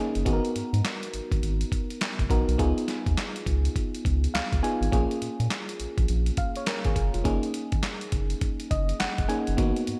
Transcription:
Already playing: A#3 C#4 D#4 G#4
0.15 F#1, closed hi-hat
0.25 G#1 B3 D#4 F#4 G#4, kick, closed hi-hat
0.33 A#4
0.45 closed hi-hat
0.56 G#2, closed hi-hat
0.73 G#2, closed hi-hat
0.85 snare, clap, closed hi-hat
1.03 closed hi-hat
1.14 G#1, closed hi-hat
1.32 G#1, kick, closed hi-hat
1.42 G#1, closed hi-hat
1.61 closed hi-hat
1.72 kick, closed hi-hat
1.90 closed hi-hat
2.01 snare, clap, closed hi-hat
2.19 F#1, kick, closed hi-hat
2.29 A#1 B3 D#4 F#4 A#4, kick, closed hi-hat
2.48 B1, closed hi-hat
2.58 C#2 B3 D#4 F4 G#4, kick, closed hi-hat
2.78 closed hi-hat
2.88 snare, closed hi-hat
3.06 D#2, kick, closed hi-hat
3.17 snare, clap, closed hi-hat
3.36 closed hi-hat
3.46 C#2, kick, closed hi-hat
3.65 closed hi-hat
3.76 kick, closed hi-hat
3.95 closed hi-hat
4.05 C#2, kick, closed hi-hat
4.24 closed hi-hat
4.34 C#2 F5, snare, clap, closed hi-hat
4.52 C#2, kick, closed hi-hat
4.62 B3 D#4 F4 G#4 G#5, closed hi-hat
4.81 G#1, closed hi-hat
4.92 A#1 A#3 C#4 F4 G#4, kick, closed hi-hat
5.11 closed hi-hat
5.22 A#2, closed hi-hat
5.40 A#2, closed hi-hat
5.50 snare, clap, closed hi-hat
5.69 closed hi-hat
5.80 A#1, closed hi-hat
5.98 A#1, kick, closed hi-hat
6.08 A#1, closed hi-hat
6.26 closed hi-hat
6.37 F5, kick, closed hi-hat
6.55 C#5, closed hi-hat
6.66 A#4, snare, clap, closed hi-hat
6.84 G#1 G#4, kick, closed hi-hat
6.96 F#1 G#4, kick, closed hi-hat
7.14 F1 F4, closed hi-hat
7.24 F#1 A#3 C#4 D#4 G#4, kick, closed hi-hat
7.43 closed hi-hat
7.54 closed hi-hat
7.72 G#1, kick, closed hi-hat
7.83 snare, clap, closed hi-hat
8.01 closed hi-hat
8.12 F#1, kick, closed hi-hat
8.30 closed hi-hat
8.41 kick, closed hi-hat
8.60 closed hi-hat
8.71 F#1 D#5, kick, closed hi-hat
8.89 closed hi-hat
9.00 F#1 F#5, snare, clap, closed hi-hat
9.18 F#1, kick, closed hi-hat
9.28 A#3 C#4 D#4 G#4 G#5, closed hi-hat
9.47 F#1, closed hi-hat
9.57 G#1 A#3 B3 D#4 F#4, kick, closed hi-hat
9.76 closed hi-hat
9.87 G#2, closed hi-hat

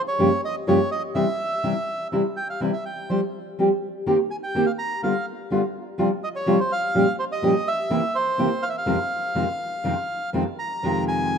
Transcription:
0.08 C#5
0.18 G2 C#3 F3 A#3 F4 G4
0.45 D#5
0.67 G2 C#3 F3 A#3 F4 G4 C#5
0.92 D#5
1.15 C3 E3 G3 C4 E4 E5
1.64 C3 E3 G3 C4 E4
2.12 C3 E3 G3 C4 E4
2.37 G5
2.50 F5
2.60 C3 E3 G3 C4 E4
2.73 E5
2.85 G5
3.10 F3 G3 C4 G4 C5
3.59 F3 G3 C4 G4
4.06 D#3 A#3 C4 G4
4.31 G#5
4.43 G5
4.55 D#3 A#3 C4 G4
4.66 F5
4.79 A#5
5.03 D3 G3 B3 F4 F5
5.51 D3 G3 B3 F4
5.98 C3 F3 G3 C4 F4
6.24 D#5
6.36 C#5
6.46 C3 F3 G3 C4 F4
6.60 C5
6.72 F5
6.94 A#2 F3 G3 C#4 G4
7.19 C5
7.32 D#5
7.42 A#2 F3 G3 C#4 G4
7.68 E5
7.90 C3 E3 A#3 C4 E4
8.15 C5
8.38 C3 E3 A#3 C4 E4
8.62 F5
8.69 E5
8.78 F5
8.86 F2 C3 D#3 G#3 C4 F4
9.35 F2 C3 D#3 G#3 C4 F4
9.84 F2 C3 D#3 G#3 C4 F4
10.33 F2 C3 D#3 G#3 C4 F4
10.59 A#5
10.83 F2 C3 D#3 G#3 C4 F4
11.08 G#5

